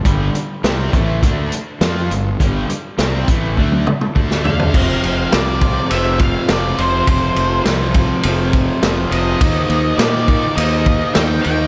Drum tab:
CC |----------------|----------------|x---------------|----------------|
RD |----------------|----------------|--x-x-x-x-x-x-x-|x-x-x-x-x-x-x-x-|
HH |x-x-x-x-x-x-x-x-|x-x-x-x---------|----------------|----------------|
SD |----o-------o---|----o--------o--|----o-------o---|----o-------o---|
T1 |----------------|---------o------|----------------|----------------|
T2 |----------------|----------oo----|----------------|----------------|
FT |----------------|--------------oo|----------------|----------------|
BD |o-----o-o-------|o-----o-o---o---|o-----o---o-----|o-----o---o-----|

CC |----------------|
RD |x-x-x-x-x-x-x-x-|
HH |----------------|
SD |----o-------o---|
T1 |----------------|
T2 |----------------|
FT |----------------|
BD |o-----o---o-----|